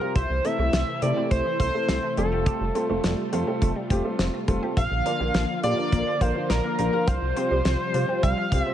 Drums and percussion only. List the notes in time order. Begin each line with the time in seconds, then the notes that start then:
0.16 kick, closed hi-hat
0.45 closed hi-hat
0.73 snare, closed hi-hat
1.02 closed hi-hat
1.31 kick, closed hi-hat
1.60 kick, closed hi-hat
1.89 snare, closed hi-hat
2.17 closed hi-hat
2.46 kick, closed hi-hat
2.75 closed hi-hat
3.04 snare, closed hi-hat
3.33 closed hi-hat
3.62 kick, closed hi-hat
3.90 kick, closed hi-hat
4.19 snare, closed hi-hat
4.48 kick, closed hi-hat
4.77 kick, closed hi-hat
5.06 closed hi-hat
5.34 snare, closed hi-hat
5.63 closed hi-hat
5.92 kick, closed hi-hat
6.21 kick, closed hi-hat
6.50 snare, closed hi-hat
6.79 closed hi-hat
7.08 kick, closed hi-hat
7.37 closed hi-hat
7.65 snare, closed hi-hat
7.94 closed hi-hat
8.23 kick, closed hi-hat
8.52 kick, closed hi-hat